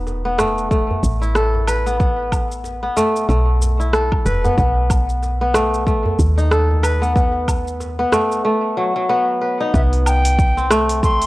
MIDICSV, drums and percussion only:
0, 0, Header, 1, 3, 480
1, 0, Start_track
1, 0, Tempo, 645161
1, 1488, Time_signature, 4, 2, 24, 8
1, 8381, End_track
2, 0, Start_track
2, 0, Title_t, "Djembe"
2, 50, Note_on_c, 9, 62, 45
2, 125, Note_off_c, 9, 62, 0
2, 287, Note_on_c, 9, 62, 59
2, 295, Note_on_c, 9, 63, 61
2, 362, Note_off_c, 9, 62, 0
2, 370, Note_off_c, 9, 63, 0
2, 675, Note_on_c, 9, 64, 73
2, 749, Note_off_c, 9, 64, 0
2, 1150, Note_on_c, 9, 63, 62
2, 1224, Note_off_c, 9, 63, 0
2, 1964, Note_on_c, 9, 62, 44
2, 2039, Note_off_c, 9, 62, 0
2, 2208, Note_on_c, 9, 63, 61
2, 2211, Note_on_c, 9, 62, 59
2, 2283, Note_off_c, 9, 63, 0
2, 2285, Note_off_c, 9, 62, 0
2, 2690, Note_on_c, 9, 63, 59
2, 2764, Note_off_c, 9, 63, 0
2, 3171, Note_on_c, 9, 63, 58
2, 3172, Note_on_c, 9, 64, 68
2, 3245, Note_off_c, 9, 63, 0
2, 3246, Note_off_c, 9, 64, 0
2, 3313, Note_on_c, 9, 64, 74
2, 3387, Note_off_c, 9, 64, 0
2, 3652, Note_on_c, 9, 63, 35
2, 3727, Note_off_c, 9, 63, 0
2, 3888, Note_on_c, 9, 62, 48
2, 3962, Note_off_c, 9, 62, 0
2, 4125, Note_on_c, 9, 63, 61
2, 4128, Note_on_c, 9, 62, 71
2, 4199, Note_off_c, 9, 63, 0
2, 4203, Note_off_c, 9, 62, 0
2, 4507, Note_on_c, 9, 64, 86
2, 4581, Note_off_c, 9, 64, 0
2, 4992, Note_on_c, 9, 63, 55
2, 5067, Note_off_c, 9, 63, 0
2, 5563, Note_on_c, 9, 63, 32
2, 5638, Note_off_c, 9, 63, 0
2, 5805, Note_on_c, 9, 62, 47
2, 5880, Note_off_c, 9, 62, 0
2, 6041, Note_on_c, 9, 62, 69
2, 6044, Note_on_c, 9, 63, 64
2, 6116, Note_off_c, 9, 62, 0
2, 6118, Note_off_c, 9, 63, 0
2, 8381, End_track
3, 0, Start_track
3, 0, Title_t, "Drums"
3, 53, Note_on_c, 9, 82, 28
3, 127, Note_off_c, 9, 82, 0
3, 288, Note_on_c, 9, 37, 66
3, 292, Note_on_c, 9, 82, 68
3, 362, Note_off_c, 9, 37, 0
3, 367, Note_off_c, 9, 82, 0
3, 432, Note_on_c, 9, 82, 38
3, 506, Note_off_c, 9, 82, 0
3, 528, Note_on_c, 9, 36, 94
3, 531, Note_on_c, 9, 82, 32
3, 602, Note_off_c, 9, 36, 0
3, 606, Note_off_c, 9, 82, 0
3, 767, Note_on_c, 9, 36, 52
3, 771, Note_on_c, 9, 82, 77
3, 842, Note_off_c, 9, 36, 0
3, 845, Note_off_c, 9, 82, 0
3, 912, Note_on_c, 9, 82, 39
3, 986, Note_off_c, 9, 82, 0
3, 1006, Note_on_c, 9, 37, 70
3, 1010, Note_on_c, 9, 82, 30
3, 1080, Note_off_c, 9, 37, 0
3, 1084, Note_off_c, 9, 82, 0
3, 1246, Note_on_c, 9, 77, 75
3, 1250, Note_on_c, 9, 82, 70
3, 1320, Note_off_c, 9, 77, 0
3, 1325, Note_off_c, 9, 82, 0
3, 1389, Note_on_c, 9, 82, 42
3, 1464, Note_off_c, 9, 82, 0
3, 1488, Note_on_c, 9, 36, 113
3, 1490, Note_on_c, 9, 82, 29
3, 1562, Note_off_c, 9, 36, 0
3, 1565, Note_off_c, 9, 82, 0
3, 1726, Note_on_c, 9, 77, 74
3, 1727, Note_on_c, 9, 36, 55
3, 1731, Note_on_c, 9, 82, 69
3, 1801, Note_off_c, 9, 77, 0
3, 1802, Note_off_c, 9, 36, 0
3, 1805, Note_off_c, 9, 82, 0
3, 1872, Note_on_c, 9, 82, 38
3, 1946, Note_off_c, 9, 82, 0
3, 1972, Note_on_c, 9, 82, 29
3, 2046, Note_off_c, 9, 82, 0
3, 2210, Note_on_c, 9, 82, 72
3, 2284, Note_off_c, 9, 82, 0
3, 2352, Note_on_c, 9, 82, 39
3, 2426, Note_off_c, 9, 82, 0
3, 2452, Note_on_c, 9, 82, 30
3, 2526, Note_off_c, 9, 82, 0
3, 2693, Note_on_c, 9, 82, 74
3, 2767, Note_off_c, 9, 82, 0
3, 2832, Note_on_c, 9, 82, 39
3, 2907, Note_off_c, 9, 82, 0
3, 2926, Note_on_c, 9, 37, 70
3, 2931, Note_on_c, 9, 82, 29
3, 3000, Note_off_c, 9, 37, 0
3, 3005, Note_off_c, 9, 82, 0
3, 3065, Note_on_c, 9, 77, 62
3, 3066, Note_on_c, 9, 36, 94
3, 3139, Note_off_c, 9, 77, 0
3, 3140, Note_off_c, 9, 36, 0
3, 3169, Note_on_c, 9, 82, 72
3, 3244, Note_off_c, 9, 82, 0
3, 3309, Note_on_c, 9, 82, 41
3, 3383, Note_off_c, 9, 82, 0
3, 3405, Note_on_c, 9, 36, 107
3, 3409, Note_on_c, 9, 82, 29
3, 3480, Note_off_c, 9, 36, 0
3, 3484, Note_off_c, 9, 82, 0
3, 3645, Note_on_c, 9, 36, 101
3, 3645, Note_on_c, 9, 77, 73
3, 3650, Note_on_c, 9, 82, 73
3, 3719, Note_off_c, 9, 77, 0
3, 3720, Note_off_c, 9, 36, 0
3, 3724, Note_off_c, 9, 82, 0
3, 3789, Note_on_c, 9, 82, 40
3, 3864, Note_off_c, 9, 82, 0
3, 3890, Note_on_c, 9, 82, 26
3, 3965, Note_off_c, 9, 82, 0
3, 4124, Note_on_c, 9, 37, 75
3, 4129, Note_on_c, 9, 82, 66
3, 4199, Note_off_c, 9, 37, 0
3, 4203, Note_off_c, 9, 82, 0
3, 4270, Note_on_c, 9, 82, 39
3, 4345, Note_off_c, 9, 82, 0
3, 4365, Note_on_c, 9, 36, 92
3, 4370, Note_on_c, 9, 82, 32
3, 4439, Note_off_c, 9, 36, 0
3, 4444, Note_off_c, 9, 82, 0
3, 4605, Note_on_c, 9, 36, 53
3, 4608, Note_on_c, 9, 82, 70
3, 4679, Note_off_c, 9, 36, 0
3, 4682, Note_off_c, 9, 82, 0
3, 4749, Note_on_c, 9, 82, 38
3, 4824, Note_off_c, 9, 82, 0
3, 4846, Note_on_c, 9, 37, 71
3, 4851, Note_on_c, 9, 82, 30
3, 4921, Note_off_c, 9, 37, 0
3, 4925, Note_off_c, 9, 82, 0
3, 5085, Note_on_c, 9, 77, 74
3, 5089, Note_on_c, 9, 82, 72
3, 5159, Note_off_c, 9, 77, 0
3, 5164, Note_off_c, 9, 82, 0
3, 5230, Note_on_c, 9, 82, 44
3, 5304, Note_off_c, 9, 82, 0
3, 5325, Note_on_c, 9, 36, 115
3, 5329, Note_on_c, 9, 82, 30
3, 5399, Note_off_c, 9, 36, 0
3, 5404, Note_off_c, 9, 82, 0
3, 5565, Note_on_c, 9, 36, 58
3, 5565, Note_on_c, 9, 77, 82
3, 5569, Note_on_c, 9, 82, 77
3, 5639, Note_off_c, 9, 36, 0
3, 5639, Note_off_c, 9, 77, 0
3, 5644, Note_off_c, 9, 82, 0
3, 5710, Note_on_c, 9, 82, 41
3, 5785, Note_off_c, 9, 82, 0
3, 5810, Note_on_c, 9, 82, 30
3, 5884, Note_off_c, 9, 82, 0
3, 6045, Note_on_c, 9, 37, 74
3, 6049, Note_on_c, 9, 82, 70
3, 6119, Note_off_c, 9, 37, 0
3, 6124, Note_off_c, 9, 82, 0
3, 6188, Note_on_c, 9, 82, 41
3, 6263, Note_off_c, 9, 82, 0
3, 7248, Note_on_c, 9, 36, 107
3, 7252, Note_on_c, 9, 82, 46
3, 7322, Note_off_c, 9, 36, 0
3, 7327, Note_off_c, 9, 82, 0
3, 7387, Note_on_c, 9, 46, 28
3, 7461, Note_off_c, 9, 46, 0
3, 7486, Note_on_c, 9, 77, 79
3, 7491, Note_on_c, 9, 82, 77
3, 7561, Note_off_c, 9, 77, 0
3, 7565, Note_off_c, 9, 82, 0
3, 7626, Note_on_c, 9, 46, 59
3, 7631, Note_on_c, 9, 82, 33
3, 7700, Note_off_c, 9, 46, 0
3, 7705, Note_off_c, 9, 82, 0
3, 7727, Note_on_c, 9, 36, 104
3, 7731, Note_on_c, 9, 82, 43
3, 7802, Note_off_c, 9, 36, 0
3, 7805, Note_off_c, 9, 82, 0
3, 7870, Note_on_c, 9, 82, 30
3, 7945, Note_off_c, 9, 82, 0
3, 7965, Note_on_c, 9, 37, 78
3, 7970, Note_on_c, 9, 82, 73
3, 8039, Note_off_c, 9, 37, 0
3, 8044, Note_off_c, 9, 82, 0
3, 8105, Note_on_c, 9, 46, 55
3, 8110, Note_on_c, 9, 82, 34
3, 8179, Note_off_c, 9, 46, 0
3, 8184, Note_off_c, 9, 82, 0
3, 8206, Note_on_c, 9, 36, 96
3, 8210, Note_on_c, 9, 82, 45
3, 8281, Note_off_c, 9, 36, 0
3, 8285, Note_off_c, 9, 82, 0
3, 8345, Note_on_c, 9, 46, 48
3, 8349, Note_on_c, 9, 82, 32
3, 8381, Note_off_c, 9, 46, 0
3, 8381, Note_off_c, 9, 82, 0
3, 8381, End_track
0, 0, End_of_file